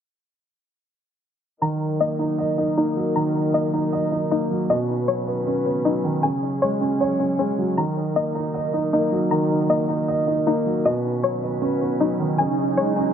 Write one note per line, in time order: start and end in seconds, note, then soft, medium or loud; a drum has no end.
1.61 2.58 D#3 medium
1.61 4.66 F#3 medium
1.61 4.66 D#4 medium
1.61 4.66 A#4 medium
1.61 3.14 A#5 loud
2.00 2.76 A#3 medium
2.00 3.53 D#5 medium
2.19 2.56 D#4 medium
2.38 3.35 D#5 medium
2.58 3.54 D#4 medium
2.77 3.53 A#3 medium
2.77 4.30 D#4 medium
2.96 3.92 F#3 medium
3.16 4.12 D#3 medium
3.16 4.69 A#5 loud
3.54 4.30 A#3 medium
3.54 4.69 D#5 loud
3.73 4.10 D#4 medium
3.93 4.70 D#5 loud
4.12 4.70 D#4 medium
4.31 4.70 A#3 medium
4.31 4.70 D#4 medium
4.51 4.70 F#3 medium
4.70 5.66 B2 medium
4.70 6.22 D#3 medium
4.70 7.74 C#4 medium
4.70 6.22 B4 medium
4.70 6.24 D#5 loud
5.08 5.84 F#3 medium
5.08 6.23 C#5 medium
5.27 5.64 B3 medium
5.47 6.23 C#4 loud
5.66 6.23 B3 medium
5.85 6.23 F#3 medium
5.85 6.23 D#4 medium
6.04 6.23 D#3 medium
6.23 7.19 C#3 medium
6.23 7.76 F#3 medium
6.23 7.76 G#4 medium
6.23 7.77 G#5 loud
6.62 7.38 G#3 medium
6.62 7.77 C#5 loud
6.81 7.18 C#4 medium
7.00 7.77 C#5 medium
7.20 7.77 C#4 medium
7.39 7.77 G#3 medium
7.39 7.77 C#4 medium
7.58 7.77 F#3 medium
7.77 8.73 D#3 medium
7.77 10.82 F#3 medium
7.77 10.82 D#4 medium
7.77 10.82 A#4 medium
7.77 9.30 A#5 loud
8.16 8.91 A#3 medium
8.16 9.68 D#5 medium
8.35 8.72 D#4 medium
8.54 9.50 D#5 medium
8.73 9.70 D#4 medium
8.93 9.68 A#3 medium
8.93 10.46 D#4 medium
9.12 10.08 F#3 medium
9.31 10.27 D#3 medium
9.31 10.85 A#5 loud
9.70 10.45 A#3 medium
9.70 10.84 D#5 medium
9.89 10.26 D#4 medium
10.08 10.85 D#5 loud
10.27 10.85 D#4 medium
10.47 10.85 A#3 medium
10.47 10.85 D#4 medium
10.66 10.85 F#3 medium
10.85 11.81 B2 loud
10.85 12.37 D#3 medium
10.85 13.13 C#4 medium
10.85 12.37 B4 medium
10.85 12.39 D#5 loud
10.85 swell medium
11.23 11.99 F#3 medium
11.23 12.39 C#5 loud
11.43 11.79 B3 medium
11.62 12.39 C#4 loud
11.81 12.39 B3 medium
12.00 12.39 F#3 medium
12.00 12.39 D#4 medium
12.19 12.39 D#3 medium
12.38 13.13 C#3 medium
12.38 13.13 F#3 medium
12.38 13.13 G#4 medium
12.38 13.13 G#5 loud
12.77 13.13 G#3 medium
12.77 13.13 C#5 loud
12.96 13.13 C#4 medium